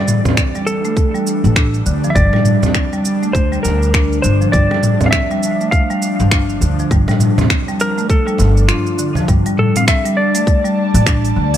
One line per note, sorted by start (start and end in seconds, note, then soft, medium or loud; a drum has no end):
0.00 1.70 E3 medium
0.00 0.24 G3 loud
0.00 4.53 G3 medium
0.00 11.57 D4 medium
0.00 0.69 D5 loud
0.08 mid tom medium
0.08 cabasa medium
0.25 0.53 C4 medium
0.25 cajon bass medium
0.25 cajon slap medium
0.25 mid tom medium
0.25 cabasa soft
0.37 finger snap medium
0.37 kick medium
0.37 cabasa soft
0.55 0.67 G3 medium
0.55 cajon slap soft
0.55 cabasa soft
0.67 1.82 A4 medium
0.67 cabasa medium
0.85 1.13 A3 medium
0.85 cabasa soft
0.97 kick loud
0.97 cabasa soft
1.15 1.55 G3 loud
1.15 cabasa soft
1.27 cabasa medium
1.44 1.79 A1 medium
1.44 cabasa soft
1.56 1.85 D4 medium
1.56 finger snap medium
1.56 kick loud
1.56 cabasa soft
1.74 cabasa soft
1.86 2.08 D2 medium
1.86 2.03 D3 medium
1.86 cabasa medium
2.04 2.15 F3 medium
2.04 cabasa soft
2.10 2.16 E5 medium
2.15 2.27 G1 medium
2.15 2.32 G3 medium
2.15 3.33 D5 medium
2.15 kick loud
2.15 cabasa soft
2.33 2.61 G3 loud
2.33 cajon slap medium
2.33 mid tom medium
2.45 mid tom medium
2.45 cabasa medium
2.63 2.91 C4 medium
2.63 cajon bass medium
2.63 cajon slap medium
2.63 cabasa soft
2.75 finger snap medium
2.75 kick medium
2.75 cabasa soft
2.93 3.04 G3 loud
2.93 cajon slap soft
2.93 cabasa soft
3.05 cabasa medium
3.23 3.50 A3 medium
3.23 cabasa soft
3.33 3.56 D2 medium
3.33 3.63 C5 medium
3.33 kick loud
3.33 cabasa soft
3.52 3.93 G3 loud
3.52 cabasa soft
3.63 4.17 D2 medium
3.63 4.22 A#4 medium
3.63 cajon slap medium
3.63 cabasa medium
3.82 cabasa soft
3.94 4.23 D4 medium
3.94 finger snap medium
3.94 kick loud
3.94 cabasa soft
4.12 cabasa soft
4.22 4.45 G1 medium
4.22 4.40 D3 medium
4.22 4.52 C5 medium
4.22 cabasa medium
4.41 4.53 F3 medium
4.41 cabasa soft
4.52 4.65 G1 medium
4.52 9.29 F3 medium
4.52 4.69 G3 medium
4.52 5.08 D5 loud
4.52 kick medium
4.52 cabasa soft
4.71 4.99 G3 loud
4.71 cajon slap medium
4.83 mid tom medium
4.83 cabasa medium
5.00 5.29 C4 medium
5.00 cajon bass medium
5.00 cajon slap medium
5.00 mid tom medium
5.00 cabasa soft
5.06 5.10 F5 medium
5.11 5.71 E5 loud
5.11 finger snap medium
5.11 kick medium
5.11 cabasa soft
5.31 5.42 G3 loud
5.31 cajon slap soft
5.31 cabasa soft
5.43 cabasa medium
5.61 5.88 A3 medium
5.61 cabasa soft
5.71 6.57 F5 loud
5.71 kick loud
5.71 cabasa soft
5.90 6.31 G3 loud
5.90 cabasa soft
6.02 cabasa medium
6.20 6.55 G1 medium
6.20 cabasa soft
6.31 6.60 D4 medium
6.31 finger snap loud
6.31 kick loud
6.31 cabasa soft
6.49 cabasa soft
6.61 6.83 D2 medium
6.61 6.78 D3 medium
6.61 cabasa medium
6.79 6.91 F3 medium
6.79 cabasa soft
6.91 7.02 G1 medium
6.91 7.08 G3 medium
6.91 kick loud
6.91 cabasa soft
7.08 7.37 G3 loud
7.08 cajon slap medium
7.08 mid tom medium
7.08 cabasa soft
7.20 mid tom medium
7.20 cabasa medium
7.38 7.66 C4 medium
7.38 cajon bass medium
7.38 cajon slap medium
7.38 mid tom medium
7.38 cabasa soft
7.50 finger snap loud
7.50 kick medium
7.50 cabasa soft
7.68 7.79 G3 medium
7.68 cajon slap soft
7.68 cabasa soft
7.80 8.10 A#4 loud
7.80 cabasa medium
7.98 8.26 A3 medium
7.98 cabasa soft
8.10 8.71 A4 loud
8.10 kick loud
8.10 cabasa soft
8.27 8.68 G3 loud
8.27 cabasa soft
8.38 8.69 G1 medium
8.38 cajon slap medium
8.38 cabasa medium
8.57 cabasa soft
8.68 8.98 D4 medium
8.68 9.13 F4 medium
8.68 finger snap loud
8.68 cabasa soft
8.87 cabasa soft
8.99 9.16 D3 medium
8.99 cabasa medium
9.15 9.28 F3 medium
9.15 cajon bass medium
9.15 cabasa soft
9.28 9.40 G1 loud
9.28 9.45 G3 loud
9.28 11.57 G3 medium
9.28 kick loud
9.28 cabasa medium
9.46 9.74 G3 loud
9.46 open hi-hat soft
9.46 cabasa soft
9.58 9.75 A4 medium
9.58 mid tom medium
9.76 10.04 C4 medium
9.76 9.88 F5 loud
9.76 mid tom medium
9.76 open hi-hat medium
9.76 cabasa medium
9.86 10.16 E5 loud
9.86 11.57 A5 medium
9.86 finger snap loud
9.86 kick loud
9.86 cabasa medium
10.05 10.17 G3 loud
10.05 open hi-hat soft
10.05 cabasa soft
10.12 11.57 D5 medium
10.17 11.32 D5 loud
10.35 10.63 A3 medium
10.35 open hi-hat medium
10.35 cabasa medium
10.47 kick loud
10.47 cabasa medium
10.65 11.05 G3 loud
10.65 cabasa soft
10.94 11.30 A1 loud
10.94 open hi-hat medium
10.94 cabasa medium
11.06 11.35 D4 medium
11.06 finger snap loud
11.06 kick loud
11.06 cabasa medium
11.25 open hi-hat soft
11.25 cabasa soft
11.36 11.57 D2 medium
11.36 11.53 D3 medium
11.54 11.57 F3 medium
11.54 open hi-hat medium
11.54 cabasa medium